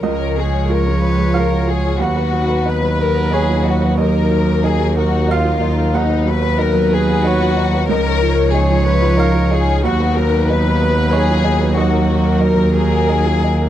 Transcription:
0.01 C#2 F3 G#3 F4 A#4 C#5 D#5
0.20 C#5
0.37 G#3 G#4
0.53 C#5
0.69 F4 A#4
0.87 G#3
1.02 B4 C#5
1.19 G#4
1.34 F4 A#4 F5
1.51 F#4
1.67 F4 G#4
1.84 C#5
1.99 D#2 F#3 B3 D#4 F#4 B4 F#5
2.16 B4
2.33 F#3
2.49 B4
2.66 D#4 B4
2.82 F#3
2.98 A#4 B4
3.15 F#4
3.31 D#4 G#4 C#5
3.49 F4
3.65 D#4 F#4
3.81 B4
3.97 D#2 A#4 D#5
4.14 A#4
4.30 F#3
4.47 A#4
4.64 D#4 G#4
4.80 F#3
4.97 F#4 A#4
5.13 F#4
5.28 D#4 F4 F5
5.45 F4
5.61 D#4
5.78 A#4
5.93 D#2 F#3 B3 D#4 B4 F#5
6.10 B4
6.25 F#3 B4
6.41 B4
6.59 D#4 A#4
6.74 F#3
6.91 G#4 B4
7.07 F#4
7.23 D#4 F#4 C#5
7.41 F4
7.57 D#4
7.73 B4
7.88 C#2 F3 D#4 A#4 C#5 D#5
8.06 C#5
8.22 F3
8.39 C#5
8.52 D#4 G#4
8.70 F3
8.84 B4 C#5
9.02 F4
9.17 D#4 A#4 F5
9.34 F4
9.51 D#4 G#4
9.69 C#5
9.83 D#2 F#3 B3 F#4 B4 F#5
10.00 B4
10.15 F#3 A#4
10.35 B4
10.47 D#4 B4
10.66 F#3
10.82 B4
10.97 F#4
11.11 D#4 G#4 C#5
11.30 F4
11.44 D#4
11.61 B4
11.75 D#2 F#4 A#4 D#5
11.92 A#4
12.09 F#3
12.25 A#4
12.41 D#4 A#4
12.57 F#3
12.72 G#4 A#4
12.92 F#4
13.06 D#4 A#4
13.26 F4
13.44 D#4
13.61 A#4

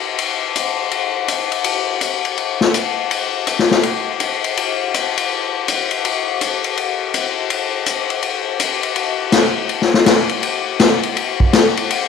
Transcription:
0.18 ride
0.56 hi-hat pedal, ride
0.91 ride
1.28 hi-hat pedal, ride
1.52 ride
1.64 ride
2.01 hi-hat pedal, ride
2.25 ride
2.38 ride
2.61 snare
2.74 hi-hat pedal, ride
3.11 ride
3.47 hi-hat pedal, ride
3.59 snare
3.71 snare
3.83 ride
4.20 hi-hat pedal, ride
4.44 ride
4.57 ride
4.94 hi-hat pedal, ride
5.17 ride
5.68 hi-hat pedal, ride
5.91 ride
6.05 ride
6.41 hi-hat pedal, ride
6.64 ride
6.77 ride
7.14 hi-hat pedal, ride
7.50 ride
7.86 hi-hat pedal, ride
8.10 ride
8.23 ride
8.60 hi-hat pedal, ride
8.83 ride
8.96 ride
9.32 snare, hi-hat pedal, ride
9.69 ride
9.82 snare
9.94 snare
10.06 snare, hi-hat pedal, ride
10.29 ride
10.43 ride
10.80 snare, hi-hat pedal, ride
11.03 ride
11.17 ride
11.40 kick
11.53 snare, hi-hat pedal, ride
11.77 ride
11.90 ride

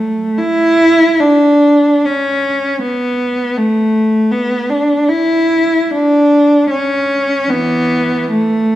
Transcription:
Already playing: A3
0.38 E4
1.20 D4
2.05 C#4
2.82 B3
3.58 A3
4.31 B3
4.70 D4
5.09 E4
5.91 D4
6.70 C#4
7.49 E3 B3
8.31 A3

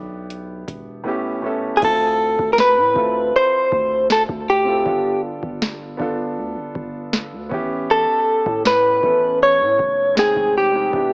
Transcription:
Already playing: B1 B3 D4 E4 G4 D5
0.30 closed hi-hat
0.68 E1, kick, closed hi-hat
1.04 A2 B3 C#4 E4
1.08 G4
1.42 A2 B3 C#4 E4
1.46 A4
1.77 C4 E4 G#4
1.82 D2 F4 A4, kick, crash
2.39 D2, kick
2.53 A#4
2.58 B4, snare
2.77 A2
2.94 D2 C4 E4 F4, kick
2.98 A4
3.36 C5
3.72 D2, kick
4.10 A4, snare
4.29 D2, kick
4.50 G4
4.64 C4 E4 F4
4.69 A4
4.83 G1 B3 D4 F4, kick
4.88 A4
5.43 G1, kick
5.62 snare
5.97 G1 B3 D4 F4, kick
6.02 A4
6.38 D2
6.57 G1
6.76 G1, kick
7.13 snare
7.33 D2
7.49 A1 B3 C#4 E4, kick
7.54 G4
7.91 A4
8.46 A2, kick
8.66 B4, snare
9.01 A1 B3 C#4 E4, kick
9.06 A4
9.43 C#5
9.61 A2
9.79 F1, kick
10.15 G#3 C4 D#4 G#4, snare
10.19 G5
10.36 F1, kick
10.58 G4
10.72 G#3 C4 D#4
10.76 G4
10.91 E1 B3 D4 E4, kick
10.96 G4

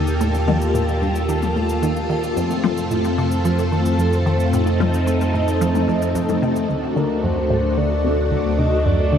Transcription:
Already playing: D#2 A#3 D#4 G4 A4 A5
0.07 cabasa
0.20 A2 F4, cabasa
0.34 cabasa
0.48 D#3, high tom
0.62 cabasa
0.75 A2, cabasa
0.89 cabasa
1.02 G2
1.15 cabasa
1.29 D#3, cabasa
1.42 high tom, cabasa
1.56 A2
1.69 cabasa
1.83 D#3, cabasa
1.96 cabasa
2.10 D#3
2.23 cabasa
2.37 F2 A3 C4, cabasa
2.51 cabasa
2.64 F3, high tom
2.78 cabasa
2.91 A2, cabasa
3.05 cabasa
3.18 C3
3.32 cabasa
3.45 F3, cabasa
3.59 cabasa
3.72 D#3
3.86 cabasa
3.99 F2, cabasa
4.13 cabasa
4.26 D#3
4.40 cabasa
4.53 A2 D#4, cabasa
4.67 cabasa
4.80 F3, high tom
4.94 cabasa
5.07 A2, cabasa
5.21 cabasa
5.34 A2
5.48 cabasa
5.61 F3, cabasa
5.75 high tom, cabasa
5.88 F2
6.02 cabasa
6.15 F2, cabasa
6.29 high tom, cabasa
6.42 C3
6.56 cabasa
6.69 D2 A3 D4 F#4 C5 C6
6.96 D3 A#4
7.23 F#2 C5
7.50 A2
7.77 D3 D5
8.05 C3
8.32 D2
8.58 C3 D#5
8.85 F#2 D5
9.13 D3

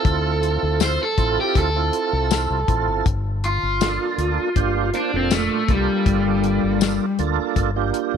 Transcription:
Already playing: C4 E4 F4 A4
0.05 D2, kick, closed hi-hat
0.43 closed hi-hat
0.63 D2
0.80 C5, snare, closed hi-hat, tambourine
1.03 A4
1.17 A1 C4 E4 F4 A4, kick, closed hi-hat
1.37 G4, muted fingered electric bass stroke
1.55 D2 A4, kick, closed hi-hat
1.76 C4 E4 F4 A4
1.93 closed hi-hat
2.13 C2
2.31 snare, closed hi-hat, tambourine
2.50 C2
2.68 A1 C4 E4 F4 A4, kick, closed hi-hat
2.88 G1
3.06 G1, kick, closed hi-hat
3.44 F4, closed hi-hat
3.63 G1
3.81 A#3 D4 F4 A4, snare, closed hi-hat, tambourine
4.18 D2, closed hi-hat
4.38 muted fingered electric bass stroke
4.56 G1 A#3 D4 F4 G4, kick, closed hi-hat
4.93 A#3 D4 F4 C5, closed hi-hat
5.13 F1 A#2 C4 D4 F4 A4
5.31 A3, snare, closed hi-hat, tambourine
5.68 C2 G3 A#3 D4 F4 A4, kick, closed hi-hat
6.06 G1, kick, closed hi-hat
6.43 closed hi-hat
6.63 G1
6.81 snare, closed hi-hat, tambourine
7.18 D2 A#3 D4 F4 A4, closed hi-hat
7.56 G1, kick, closed hi-hat
7.76 A#3 D4 F4 G4
7.94 closed hi-hat
8.14 F1

